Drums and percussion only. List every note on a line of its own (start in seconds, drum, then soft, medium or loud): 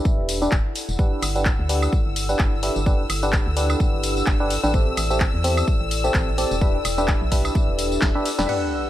0.05 kick loud
0.05 tambourine soft
0.29 open hi-hat loud
0.29 tambourine medium
0.42 tambourine soft
0.52 kick loud
0.52 clap loud
0.52 tambourine soft
0.76 open hi-hat loud
0.76 tambourine medium
0.89 tambourine soft
0.99 kick loud
0.99 tambourine soft
1.22 open hi-hat loud
1.22 tambourine medium
1.22 high woodblock medium
1.36 tambourine soft
1.45 kick loud
1.45 clap loud
1.45 tambourine soft
1.69 open hi-hat loud
1.69 tambourine medium
1.82 tambourine soft
1.82 high woodblock medium
1.93 kick loud
1.93 tambourine soft
2.16 open hi-hat loud
2.16 tambourine medium
2.29 tambourine soft
2.39 kick loud
2.39 clap loud
2.63 open hi-hat loud
2.63 tambourine medium
2.76 tambourine soft
2.86 kick loud
2.86 tambourine soft
3.10 open hi-hat loud
3.10 tambourine medium
3.10 high woodblock medium
3.23 tambourine soft
3.33 kick loud
3.33 clap loud
3.33 tambourine soft
3.57 open hi-hat loud
3.57 tambourine medium
3.70 tambourine soft
3.70 high woodblock medium
3.80 kick loud
3.80 tambourine soft
4.03 open hi-hat loud
4.03 tambourine medium
4.17 tambourine soft
4.26 kick loud
4.26 clap loud
4.26 tambourine soft
4.50 open hi-hat loud
4.50 tambourine medium
4.64 tambourine soft
4.74 kick loud
4.74 tambourine soft
4.97 open hi-hat loud
4.97 tambourine medium
4.97 high woodblock medium
5.11 tambourine soft
5.20 kick loud
5.20 clap loud
5.44 open hi-hat loud
5.44 tambourine medium
5.57 tambourine soft
5.57 high woodblock medium
5.68 kick loud
5.68 tambourine soft
5.91 open hi-hat loud
5.91 tambourine medium
6.04 tambourine soft
6.14 kick loud
6.14 clap loud
6.14 tambourine soft
6.38 open hi-hat medium
6.38 tambourine medium
6.51 tambourine soft
6.61 kick loud
6.61 tambourine soft
6.85 open hi-hat loud
6.85 tambourine medium
6.85 high woodblock medium
6.98 tambourine soft
7.08 kick loud
7.08 clap loud
7.08 tambourine soft
7.32 kick medium
7.32 open hi-hat loud
7.32 tambourine medium
7.45 tambourine soft
7.45 high woodblock medium
7.55 kick loud
7.55 tambourine soft
7.79 open hi-hat loud
7.79 tambourine medium
7.92 tambourine soft
8.02 kick loud
8.02 snare loud
8.02 clap loud
8.25 open hi-hat medium
8.25 tambourine medium
8.39 snare medium
8.39 tambourine soft
8.49 crash medium